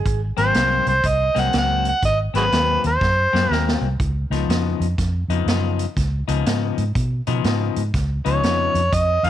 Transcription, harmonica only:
0, 0, Header, 1, 2, 480
1, 0, Start_track
1, 0, Tempo, 493016
1, 52, Time_signature, 4, 2, 24, 8
1, 9053, End_track
2, 0, Start_track
2, 0, Title_t, "Harmonica"
2, 0, Program_c, 0, 22
2, 377, Note_on_c, 0, 72, 89
2, 815, Note_off_c, 0, 72, 0
2, 859, Note_on_c, 0, 72, 95
2, 1044, Note_on_c, 0, 75, 119
2, 1059, Note_off_c, 0, 72, 0
2, 1357, Note_on_c, 0, 78, 107
2, 1371, Note_off_c, 0, 75, 0
2, 1510, Note_off_c, 0, 78, 0
2, 1537, Note_on_c, 0, 78, 106
2, 1802, Note_off_c, 0, 78, 0
2, 1835, Note_on_c, 0, 78, 93
2, 1979, Note_off_c, 0, 78, 0
2, 1997, Note_on_c, 0, 75, 100
2, 2130, Note_off_c, 0, 75, 0
2, 2305, Note_on_c, 0, 66, 68
2, 2305, Note_on_c, 0, 68, 68
2, 2305, Note_on_c, 0, 71, 97
2, 2366, Note_off_c, 0, 66, 0
2, 2383, Note_off_c, 0, 68, 0
2, 2739, Note_off_c, 0, 71, 0
2, 2800, Note_on_c, 0, 72, 88
2, 3433, Note_off_c, 0, 72, 0
2, 3433, Note_on_c, 0, 70, 88
2, 3700, Note_off_c, 0, 70, 0
2, 8046, Note_on_c, 0, 73, 92
2, 8698, Note_on_c, 0, 75, 116
2, 8712, Note_off_c, 0, 73, 0
2, 9014, Note_on_c, 0, 77, 105
2, 9028, Note_off_c, 0, 75, 0
2, 9053, Note_off_c, 0, 77, 0
2, 9053, End_track
0, 0, End_of_file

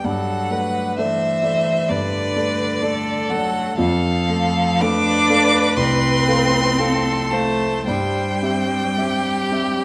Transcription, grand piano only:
0, 0, Header, 1, 2, 480
1, 0, Start_track
1, 0, Tempo, 923077
1, 28, Time_signature, 4, 2, 24, 8
1, 1467, Tempo, 985222
1, 2907, Tempo, 1015228
1, 3387, Tempo, 1086957
1, 4735, End_track
2, 0, Start_track
2, 0, Title_t, "Grand piano"
2, 0, Program_c, 0, 0
2, 0, Control_c, 0, 64, 127
2, 23, Note_on_c, 0, 43, 73
2, 36, Control_c, 0, 64, 0
2, 119, Control_c, 0, 64, 127
2, 260, Note_off_c, 0, 43, 0
2, 262, Note_on_c, 0, 57, 47
2, 266, Note_on_c, 0, 74, 48
2, 267, Note_on_c, 0, 69, 44
2, 485, Note_off_c, 0, 57, 0
2, 487, Note_off_c, 0, 69, 0
2, 487, Note_off_c, 0, 74, 0
2, 511, Note_on_c, 0, 57, 52
2, 513, Note_on_c, 0, 69, 58
2, 515, Note_on_c, 0, 74, 57
2, 728, Note_off_c, 0, 57, 0
2, 730, Note_off_c, 0, 69, 0
2, 730, Note_off_c, 0, 74, 0
2, 743, Note_on_c, 0, 57, 51
2, 747, Note_on_c, 0, 69, 53
2, 747, Note_on_c, 0, 74, 62
2, 964, Note_off_c, 0, 57, 0
2, 966, Note_off_c, 0, 69, 0
2, 966, Note_off_c, 0, 74, 0
2, 984, Note_on_c, 0, 43, 65
2, 1217, Note_off_c, 0, 43, 0
2, 1227, Note_on_c, 0, 57, 58
2, 1232, Note_on_c, 0, 69, 50
2, 1233, Note_on_c, 0, 74, 58
2, 1448, Note_off_c, 0, 57, 0
2, 1450, Note_off_c, 0, 69, 0
2, 1451, Note_off_c, 0, 74, 0
2, 1469, Note_on_c, 0, 57, 58
2, 1472, Note_on_c, 0, 69, 52
2, 1472, Note_on_c, 0, 74, 64
2, 1681, Note_off_c, 0, 57, 0
2, 1682, Note_off_c, 0, 69, 0
2, 1683, Note_off_c, 0, 74, 0
2, 1706, Note_on_c, 0, 57, 55
2, 1706, Note_on_c, 0, 69, 49
2, 1710, Note_on_c, 0, 74, 58
2, 1919, Note_off_c, 0, 69, 0
2, 1920, Note_off_c, 0, 57, 0
2, 1922, Note_off_c, 0, 74, 0
2, 1935, Note_on_c, 0, 41, 84
2, 1944, Control_c, 0, 64, 0
2, 2021, Control_c, 0, 64, 127
2, 2176, Note_off_c, 0, 41, 0
2, 2184, Note_on_c, 0, 57, 55
2, 2187, Note_on_c, 0, 69, 56
2, 2189, Note_on_c, 0, 77, 62
2, 2416, Note_off_c, 0, 57, 0
2, 2417, Note_off_c, 0, 69, 0
2, 2418, Note_off_c, 0, 77, 0
2, 2440, Note_on_c, 0, 57, 71
2, 2441, Note_on_c, 0, 69, 59
2, 2441, Note_on_c, 0, 77, 73
2, 2655, Note_off_c, 0, 57, 0
2, 2655, Note_off_c, 0, 69, 0
2, 2655, Note_off_c, 0, 77, 0
2, 2671, Note_on_c, 0, 57, 70
2, 2673, Note_on_c, 0, 69, 67
2, 2674, Note_on_c, 0, 77, 69
2, 2888, Note_off_c, 0, 57, 0
2, 2889, Note_off_c, 0, 69, 0
2, 2889, Note_off_c, 0, 77, 0
2, 2902, Note_on_c, 0, 36, 70
2, 3135, Note_off_c, 0, 36, 0
2, 3142, Note_on_c, 0, 57, 57
2, 3143, Note_on_c, 0, 69, 60
2, 3145, Note_on_c, 0, 77, 68
2, 3367, Note_off_c, 0, 57, 0
2, 3367, Note_off_c, 0, 69, 0
2, 3369, Note_off_c, 0, 77, 0
2, 3386, Note_on_c, 0, 57, 60
2, 3387, Note_on_c, 0, 69, 61
2, 3388, Note_on_c, 0, 77, 68
2, 3601, Note_off_c, 0, 57, 0
2, 3602, Note_off_c, 0, 69, 0
2, 3602, Note_off_c, 0, 77, 0
2, 3619, Note_on_c, 0, 57, 53
2, 3619, Note_on_c, 0, 69, 46
2, 3622, Note_on_c, 0, 77, 58
2, 3844, Note_off_c, 0, 57, 0
2, 3844, Note_off_c, 0, 69, 0
2, 3845, Note_off_c, 0, 77, 0
2, 3865, Note_on_c, 0, 43, 76
2, 3872, Control_c, 0, 64, 0
2, 3969, Control_c, 0, 64, 127
2, 4103, Note_off_c, 0, 43, 0
2, 4105, Note_on_c, 0, 60, 49
2, 4109, Note_on_c, 0, 67, 53
2, 4111, Note_on_c, 0, 76, 53
2, 4333, Note_off_c, 0, 60, 0
2, 4335, Note_off_c, 0, 67, 0
2, 4336, Note_off_c, 0, 76, 0
2, 4352, Note_on_c, 0, 60, 59
2, 4353, Note_on_c, 0, 67, 55
2, 4354, Note_on_c, 0, 76, 60
2, 4572, Note_off_c, 0, 60, 0
2, 4572, Note_off_c, 0, 67, 0
2, 4573, Note_off_c, 0, 76, 0
2, 4588, Note_on_c, 0, 60, 55
2, 4590, Note_on_c, 0, 67, 59
2, 4593, Note_on_c, 0, 76, 60
2, 4735, Note_off_c, 0, 60, 0
2, 4735, Note_off_c, 0, 67, 0
2, 4735, Note_off_c, 0, 76, 0
2, 4735, End_track
0, 0, End_of_file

